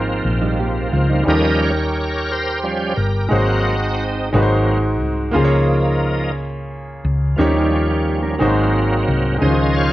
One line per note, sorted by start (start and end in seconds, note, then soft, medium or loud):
0.00 0.21 G#1 medium
0.00 0.20 G#2 medium
0.00 0.92 F3 soft
0.00 1.20 G#3 medium
0.00 0.92 A#3 soft
0.00 0.93 C4 medium
0.00 1.21 C4 medium
0.00 1.23 F4 medium
0.00 1.27 A#4 medium
0.25 0.89 A#1 medium
0.42 0.58 G3 soft
0.42 0.58 D#4 medium
0.59 0.92 A#3 medium
0.59 0.91 G4 medium
0.92 1.24 C#2 medium
0.92 1.23 F3 soft
0.92 1.09 G#3 medium
0.92 1.23 A#3 soft
0.92 1.24 C4 soft
0.92 1.09 F4 medium
1.09 1.42 G3 medium
1.09 1.42 D#4 medium
1.23 2.93 D#2 medium
1.23 2.24 D#3 medium
1.23 1.72 F3 soft
1.23 3.25 G3 medium
1.23 1.72 G3 soft
1.23 3.26 C#4 soft
1.28 1.72 C#4 medium
1.28 3.27 D#4 medium
1.28 1.61 G4 medium
1.28 1.35 A4 soft
1.28 1.61 A#4 medium
1.28 1.59 D#5 medium
1.37 3.32 A#4 medium
1.62 2.30 G4 medium
1.62 2.59 A#4 medium
1.62 2.32 C#5 loud
2.31 3.28 G4 medium
2.31 2.87 C5 medium
2.63 2.94 F3 soft
2.63 2.93 G3 soft
2.63 2.94 C#4 soft
2.90 2.96 C5 medium
2.96 3.28 G1 medium
2.96 3.31 A#4 medium
3.29 4.29 G#1 medium
3.29 4.28 G#2 medium
3.29 3.76 F#3 soft
3.29 4.31 G#3 medium
3.29 3.76 A#3 soft
3.29 4.29 C4 medium
3.29 4.32 D#4 medium
3.29 4.29 D#4 soft
3.29 4.33 F#4 medium
3.29 4.03 F#4 medium
3.29 4.33 C5 medium
4.32 5.01 G#1 loud
4.32 5.31 G#2 medium
4.32 4.77 F#3 medium
4.32 5.34 G#3 medium
4.32 4.78 A#3 soft
4.32 4.78 C4 medium
4.32 5.35 D#4 medium
4.32 5.35 F#4 medium
4.32 4.40 B4 medium
4.42 5.36 C5 medium
5.01 5.32 C2 medium
5.31 7.00 C#2 medium
5.31 6.32 C#3 medium
5.31 6.31 F3 soft
5.31 7.32 A#3 medium
5.31 6.31 A#3 soft
5.31 6.32 D#4 medium
5.31 7.33 F4 medium
5.36 7.34 G#4 medium
5.36 5.43 C5 medium
5.45 7.39 C#5 medium
7.04 7.35 C#2 medium
7.36 8.36 D#2 medium
7.36 8.36 D#3 medium
7.36 8.35 F3 medium
7.36 7.55 F3 medium
7.36 8.35 G3 soft
7.36 8.39 A#3 medium
7.36 8.36 C#4 medium
7.36 7.54 C#4 medium
7.36 8.39 D#4 medium
7.36 8.40 G4 medium
7.40 8.41 C#5 medium
7.56 7.72 G3 medium
7.56 7.71 D#4 medium
7.73 7.89 F4 medium
7.90 8.22 A#3 medium
7.90 8.21 G4 medium
8.23 8.55 C#4 medium
8.23 8.55 A#4 medium
8.38 9.04 G#1 medium
8.38 9.38 G#2 medium
8.38 9.36 F#3 soft
8.38 9.37 G#3 medium
8.38 9.37 A#3 soft
8.38 9.37 C4 medium
8.38 9.41 D#4 medium
8.38 9.42 F#4 medium
8.38 9.42 C5 medium
9.08 9.39 C2 medium
9.38 9.93 C#2 medium
9.38 9.93 C#3 medium
9.38 9.93 D#3 medium
9.38 9.93 F3 soft
9.38 9.93 G#3 medium
9.38 9.93 C#4 medium
9.38 9.75 G#4 medium
9.38 9.93 C5 medium
9.38 9.67 D#5 medium
9.43 9.49 D#4 soft
9.43 9.93 C5 medium
9.49 9.93 F4 medium
9.68 9.75 D#5 medium
9.75 9.93 F4 medium
9.75 9.93 G#4 medium
9.75 9.93 C#5 medium